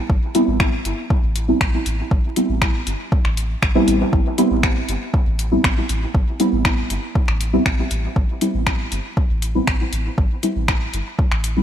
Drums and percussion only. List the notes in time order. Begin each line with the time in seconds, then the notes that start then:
0.09 kick
0.35 closed hi-hat
0.60 finger snap, kick
0.85 closed hi-hat
1.10 kick
1.36 closed hi-hat
1.61 finger snap, kick
1.86 closed hi-hat
2.11 kick
2.36 closed hi-hat
2.62 finger snap, kick
2.87 closed hi-hat
3.12 kick
3.25 finger snap
3.37 closed hi-hat
3.62 finger snap, kick
3.88 closed hi-hat
4.13 kick
4.38 closed hi-hat
4.63 finger snap, kick
4.89 closed hi-hat
5.14 kick
5.39 closed hi-hat
5.64 finger snap, kick
5.89 closed hi-hat
6.15 kick
6.40 closed hi-hat
6.65 finger snap, kick
6.90 closed hi-hat
7.15 kick
7.28 finger snap
7.41 closed hi-hat
7.66 finger snap, kick
7.91 closed hi-hat
8.16 kick
8.41 closed hi-hat
8.67 finger snap, kick
8.92 closed hi-hat
9.17 kick
9.42 closed hi-hat
9.67 finger snap, kick
9.93 closed hi-hat
10.18 kick
10.43 closed hi-hat
10.68 finger snap, kick
10.94 closed hi-hat
11.19 kick
11.32 finger snap
11.44 closed hi-hat